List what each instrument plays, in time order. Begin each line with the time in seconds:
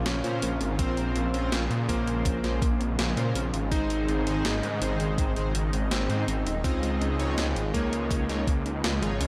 Already playing: analog synth pad C#3 F3 A#3 F4
0.05 detuned saw bass A#1, synth arpeggio sound C#4, electric grand piano C#4, snare, closed hi-hat
0.24 detuned saw bass A#2, analog polysynth C#4 F4 A#4 C5, synth arpeggio sound F4, closed hi-hat
0.42 detuned saw bass A#1, synth arpeggio sound A#3, closed hi-hat
0.60 detuned saw bass G#1, synth arpeggio sound C4, closed hi-hat
0.79 detuned saw bass A#1, analog synth pad G#3, synth arpeggio sound A#3, analog polysynth C4 F4 A#4 C5, electric grand piano C4, kick, closed hi-hat
0.97 detuned saw bass A#1, closed hi-hat
1.15 detuned saw bass A#1, synth arpeggio sound C4, closed hi-hat
1.34 detuned saw bass A#1, analog polysynth C#4 F4 A#4 C5, synth arpeggio sound C#4, closed hi-hat
1.52 detuned saw bass A#1, synth arpeggio sound F4, snare, closed hi-hat
1.70 detuned saw bass A#2, synth arpeggio sound A#3, closed hi-hat
1.89 detuned saw bass A#1, electric grand piano A#3, synth arpeggio sound C4, analog polysynth C#4 F4 A#4 C5, kick, closed hi-hat
2.07 detuned saw bass A#1, closed hi-hat
2.25 detuned saw bass A#1, synth arpeggio sound C#4, kick, closed hi-hat
2.43 detuned saw bass A#1, analog polysynth C#4 F4 A#4 C5, synth arpeggio sound F4, snare, closed hi-hat
2.62 detuned saw bass A#1, synth arpeggio sound A#3, kick, closed hi-hat
2.80 detuned saw bass A#1, synth arpeggio sound C4, closed hi-hat
2.98 detuned saw bass A#1, synth arpeggio sound A#3, snare, closed hi-hat
3.17 detuned saw bass A#2, analog polysynth C#4 F4 A#4 C5, closed hi-hat
3.35 detuned saw bass A#1, synth arpeggio sound C4, closed hi-hat
3.53 detuned saw bass G#1, synth arpeggio sound C#4, closed hi-hat
3.71 detuned saw bass G#1, analog synth pad D#3 G#3 D#4, synth arpeggio sound G#3, analog polysynth C4 D#4 G#4 C5, electric grand piano D#4, kick, closed hi-hat
3.90 detuned saw bass G#1, closed hi-hat
4.08 detuned saw bass G#1, synth arpeggio sound C4, closed hi-hat
4.26 detuned saw bass G#1, analog polysynth C4 D#4 G#4 C5, synth arpeggio sound D#4, closed hi-hat
4.45 detuned saw bass G#1, synth arpeggio sound G#4, snare, closed hi-hat
4.63 detuned saw bass G#2, synth arpeggio sound G#3, closed hi-hat
4.81 detuned saw bass G#1, synth arpeggio sound C4, analog polysynth C4 D#4 G#4 C5, closed hi-hat
5.00 detuned saw bass G#1, closed hi-hat
5.18 detuned saw bass G#1, synth arpeggio sound D#4, kick, closed hi-hat
5.36 detuned saw bass G#1, analog polysynth C4 D#4 G#4 C5, synth arpeggio sound G#4, closed hi-hat
5.55 detuned saw bass G#1, synth arpeggio sound G#3, closed hi-hat
5.73 detuned saw bass G#1, synth arpeggio sound C4, closed hi-hat
5.91 detuned saw bass G#1, synth arpeggio sound G#3, electric grand piano C4, snare, closed hi-hat
6.09 detuned saw bass G#2, analog polysynth C4 D#4 G#4 C5, closed hi-hat
6.28 detuned saw bass G#1, synth arpeggio sound C4, closed hi-hat
6.46 detuned saw bass D#1, synth arpeggio sound D#4, closed hi-hat
6.64 detuned saw bass C#2, analog synth pad C#3 F3 G#3, electric grand piano C4, analog polysynth D#4 F4 G#4 D#5, synth arpeggio sound F4, kick, closed hi-hat
6.82 detuned saw bass C#2, synth arpeggio sound G#3, closed hi-hat
7.01 detuned saw bass C#2, synth arpeggio sound C#4, closed hi-hat
7.19 detuned saw bass C#2, analog polysynth D#4 F4 G#4 C#5, closed hi-hat
7.37 detuned saw bass C#2, synth arpeggio sound D#4, snare, closed hi-hat
7.56 detuned saw bass G#1, synth arpeggio sound F4, closed hi-hat
7.74 detuned saw bass C#2, synth arpeggio sound G#3, electric grand piano A#3, analog polysynth D#4 F4 G#4 C#5, kick, closed hi-hat
7.92 detuned saw bass C#2, synth arpeggio sound C#4, closed hi-hat
8.11 detuned saw bass C#2, synth arpeggio sound G#3, kick, closed hi-hat
8.29 detuned saw bass C#2, analog polysynth D#4 F4 G#4 C#5, snare, closed hi-hat
8.47 detuned saw bass C#2, synth arpeggio sound C#4, kick, closed hi-hat
8.66 detuned saw bass C#2, synth arpeggio sound D#4, closed hi-hat
8.84 detuned saw bass C#2, synth arpeggio sound F4, snare, closed hi-hat
9.02 detuned saw bass G#1, synth arpeggio sound G#3, analog polysynth D#4 F4 G#4 C#5, closed hi-hat
9.20 detuned saw bass C#2, synth arpeggio sound C#4, closed hi-hat